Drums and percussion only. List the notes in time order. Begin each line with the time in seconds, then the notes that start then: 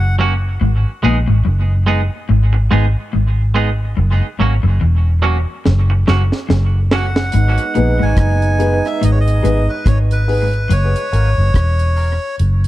5.66 snare
6.08 snare
6.32 snare
6.50 snare
6.91 snare
7.16 snare
7.32 closed hi-hat
7.58 closed hi-hat
7.75 closed hi-hat
8.17 kick, cross-stick, closed hi-hat
8.42 closed hi-hat
8.60 closed hi-hat
8.85 cross-stick, closed hi-hat
9.03 closed hi-hat
9.28 closed hi-hat
9.45 cross-stick, closed hi-hat
9.86 kick, cross-stick, closed hi-hat
10.11 closed hi-hat
10.29 open hi-hat
10.53 closed hi-hat
10.71 closed hi-hat
10.96 closed hi-hat
11.13 closed hi-hat
11.54 kick, cross-stick, closed hi-hat
11.79 closed hi-hat
11.97 open hi-hat
12.39 closed hi-hat
12.64 closed hi-hat